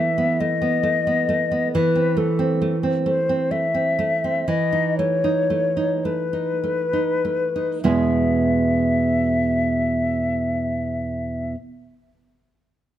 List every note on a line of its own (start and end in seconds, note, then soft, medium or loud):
0.00 1.69 E3 soft
0.00 0.31 A3 soft
0.00 0.42 E5 medium
0.18 0.53 B3 soft
0.40 0.75 A3 soft
0.40 1.72 D#5 medium
0.62 0.97 B3 soft
0.83 1.19 A3 soft
1.07 1.42 B3 soft
1.29 1.64 A3 soft
1.51 1.73 B3 soft
1.73 4.45 E3 soft
1.73 2.19 B4 medium
1.95 2.31 C4 soft
2.17 2.52 A3 soft
2.17 2.78 A4 soft
2.39 2.75 C4 soft
2.62 2.97 A3 soft
2.83 3.19 C4 soft
3.06 3.42 A3 soft
3.06 3.53 C5 soft
3.29 3.66 C4 soft
3.51 3.89 A3 soft
3.51 4.50 E5 medium
3.74 4.13 C4 soft
3.99 4.38 A3 soft
4.24 4.49 C4 soft
4.48 7.80 E3 soft
4.48 4.97 D#5 medium
4.72 5.14 D#4 soft
4.98 5.40 A3 soft
4.98 6.06 C#5 soft
5.24 5.67 D#4 soft
5.50 5.94 A3 soft
5.77 6.22 D#4 soft
6.05 6.51 A3 soft
6.05 7.82 B4 soft
6.33 6.81 D#4 soft
6.64 7.13 A3 soft
6.93 7.44 D#4 soft
7.25 7.73 A3 soft
7.56 7.84 D#4 soft
7.83 11.54 E2 soft
7.83 11.54 B2 soft
7.83 11.55 G#3 soft
7.83 11.54 B3 soft
7.83 11.54 E4 soft
7.83 11.55 G#4 soft
7.83 11.53 E5 soft